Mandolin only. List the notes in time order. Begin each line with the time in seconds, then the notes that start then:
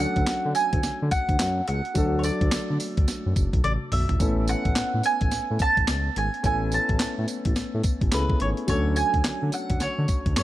0.00 F#5
0.55 G#5
1.11 F#5
1.68 F#5
2.19 C#5
2.24 D5
3.64 D5
3.93 E5
4.49 F#5
5.06 G#5
5.62 A5
6.18 G#5
6.45 G#5
6.74 A5
8.14 B4
8.42 C#5
8.69 C#5
8.96 G#5
9.54 F#5
9.81 C#5
10.38 C#5